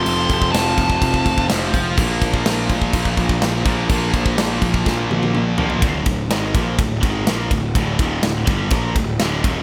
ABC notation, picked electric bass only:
X:1
M:4/4
L:1/8
Q:1/4=125
K:Dphr
V:1 name="Picked electric bass" clef=bass
F,,, F,,, F,,, F,,, F,,, F,,, F,,, F,,, | B,,, B,,, B,,, B,,, B,,, B,,, B,,, B,,, | B,,, B,,, B,,, B,,, B,,, B,,, B,,, B,,, | D,,, D,,, ^G,,, B,,, D,,, G,,, B,,, D,,, |
D,,, E,,, D,,, G,,, B,,, D,,, D,,, E,,, |]